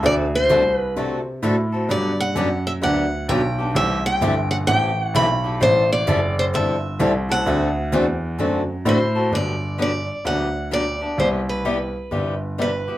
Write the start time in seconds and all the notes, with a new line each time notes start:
0.03 D2 D3 A3 C4 F#4 A4 D5
0.35 C5
0.49 C2 D3 A3 C4 F#4 A4
0.76 B4
0.96 C3 D3 A3 C4 F#4 A4
1.42 A2 D3 A3 C4 F#4 A4
1.72 C4 F#4 A4
1.89 G2 D3 F#3 B3 D4 G4 D5
2.20 F#5
2.35 F#2 D3 F#3 B3 D4 G4
2.67 E5
2.81 D2 D3 F#3 B3 D4 G4 F#5
3.28 B1 D3 F#3 B3 D4 G4 G5
3.58 B3 D4 G4
3.75 C2 C3 E3 G3 A3 C4 E4 G4 A4 E5
4.06 G5
4.21 G1 C3 E3 G3 A3 C4 E4 G4 A4
4.51 F#5
4.67 A1 C3 E3 G3 A3 C4 E4 G4 A4 G5
5.03 F#5
5.14 B1 C3 E3 G3 A3 C4 E4 G4 A4 B5
5.44 A3 E4 G4
5.60 A1 E3 G3 C4 E4 A4 C5
5.92 D5
6.07 F#1 E3 G3 C4 E4 A4
6.39 C5
6.53 G1 E3 G3 C4 E4 A4 E5
6.99 C2 E3 G3 C4 E4 A4
7.29 C4 E4 A4 F#5
7.46 D2 D3 A3 C4 F#4 A4
7.93 E2 D3 A3 C4 F#4 A4
8.39 F#2 D3 A3 C4 F#4 A4
8.85 A2 D3 A3 C4 F#4 A4 C5
9.15 C4 F#4 A4
9.32 G1 D3 F#3 B3 D4 G4 D5
9.78 D3 F#3 B3 D4 G4 D5
10.25 D2 D3 F#3 B3 D4 G4 F#5
10.71 D3 F#3 B3 D4 G4 D5
11.01 B3 D4 G4
11.18 C2 C3 G3 B3 E4 G4 C5
11.49 B4
11.65 C3 G3 B3 E4 G4
12.11 G1 C3 G3 B3 E4 G4
12.58 C3 G3 B3 E4 G4 B4
12.88 B3 E4 G4